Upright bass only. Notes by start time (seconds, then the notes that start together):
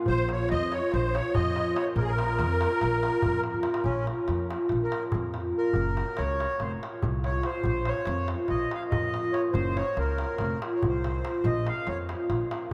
0.08 A#1
0.52 F2
0.94 A#1
1.37 F2
1.96 A#1
2.39 F2
2.83 A#1
3.25 F2
3.85 A#1
4.28 F2
4.72 A#1
5.14 F2
5.75 F#1
6.19 C#2
6.61 F1
7.03 C2
7.65 A#1
8.07 F2
8.50 A#1
8.93 F2
9.55 F#1
9.97 C#2
10.40 F1
10.84 C2
11.45 A#1
11.87 F2
12.30 A#1